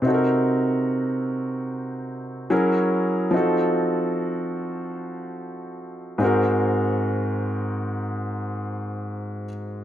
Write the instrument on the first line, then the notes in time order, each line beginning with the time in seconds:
grand piano
0.02 C3 C4 D#4
0.06 F#4 A4
0.14 A#4
2.50 F#3 C#4 E4 G#4 A#4
3.31 F3 C4 D#4
3.35 F#4 A4
6.18 G#2 G#3 C4
6.23 F#4 A#4